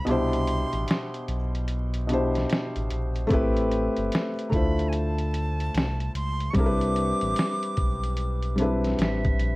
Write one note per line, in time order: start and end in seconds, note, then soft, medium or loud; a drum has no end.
0.05 0.65 C2 loud
0.05 1.36 B2 loud
0.05 1.36 D4 medium
0.05 1.37 E4 loud
0.05 1.25 C6 loud
0.05 closed hi-hat medium
0.10 1.38 G4 medium
0.10 1.39 C5 loud
0.33 closed hi-hat soft
0.47 closed hi-hat medium
0.73 0.86 A1 loud
0.73 closed hi-hat soft
0.88 snare loud
0.88 closed hi-hat medium
1.14 closed hi-hat soft
1.28 2.46 B1 medium
1.28 closed hi-hat medium
1.55 closed hi-hat soft
1.68 closed hi-hat medium
1.94 closed hi-hat medium
2.07 3.08 B2 medium
2.07 3.09 D4 medium
2.07 3.10 E4 medium
2.07 closed hi-hat medium
2.12 3.11 G4 medium
2.12 3.12 C5 loud
2.35 snare soft
2.35 closed hi-hat soft
2.50 snare loud
2.50 closed hi-hat medium
2.76 2.89 A1 medium
2.76 closed hi-hat soft
2.90 3.26 A#1 medium
2.90 closed hi-hat medium
3.16 closed hi-hat soft
3.27 3.89 A1 loud
3.27 4.29 A3 loud
3.27 4.30 C4 loud
3.27 4.31 E4 loud
3.27 kick loud
3.27 closed hi-hat medium
3.32 4.32 G4 loud
3.32 4.32 B4 loud
3.57 closed hi-hat medium
3.71 closed hi-hat medium
3.96 4.10 G1 loud
3.96 closed hi-hat soft
4.12 snare loud
4.12 closed hi-hat medium
4.39 closed hi-hat soft
4.49 5.70 D2 loud
4.49 5.83 A3 medium
4.49 5.84 D4 medium
4.49 5.85 E4 medium
4.49 4.56 A#5 medium
4.49 kick medium
4.53 5.85 F4 medium
4.53 5.86 C5 medium
4.53 4.90 B5 medium
4.53 closed hi-hat medium
4.79 closed hi-hat soft
4.88 4.96 G#5 medium
4.93 6.15 A5 loud
4.93 closed hi-hat medium
5.18 closed hi-hat soft
5.34 closed hi-hat medium
5.60 closed hi-hat soft
5.74 6.09 C2 loud
5.74 snare loud
5.74 closed hi-hat medium
6.00 closed hi-hat soft
6.15 6.50 C#2 medium
6.15 6.52 C6 loud
6.15 closed hi-hat medium
6.40 closed hi-hat soft
6.50 7.84 G3 loud
6.50 6.57 C#6 medium
6.54 7.13 C2 medium
6.54 7.85 C4 loud
6.54 7.86 D4 medium
6.54 7.87 E4 medium
6.54 8.75 D6 loud
6.54 kick loud
6.54 closed hi-hat medium
6.60 6.66 A#4 loud
6.66 7.90 B4 loud
6.81 closed hi-hat medium
6.96 closed hi-hat medium
7.21 7.35 A1 medium
7.21 closed hi-hat soft
7.36 snare loud
7.36 closed hi-hat medium
7.63 closed hi-hat soft
7.77 8.95 B1 medium
7.77 kick medium
7.77 closed hi-hat medium
8.03 closed hi-hat soft
8.17 closed hi-hat medium
8.43 closed hi-hat soft
8.56 9.56 G3 medium
8.56 9.56 C4 medium
8.56 9.56 D4 medium
8.56 closed hi-hat medium
8.60 9.56 E4 medium
8.60 9.56 B4 medium
8.84 snare soft
8.84 closed hi-hat soft
8.99 9.34 A1 medium
8.99 9.56 E5 loud
8.99 snare loud
8.99 closed hi-hat medium
9.25 kick medium
9.25 closed hi-hat soft
9.39 9.56 A#1 medium
9.39 closed hi-hat medium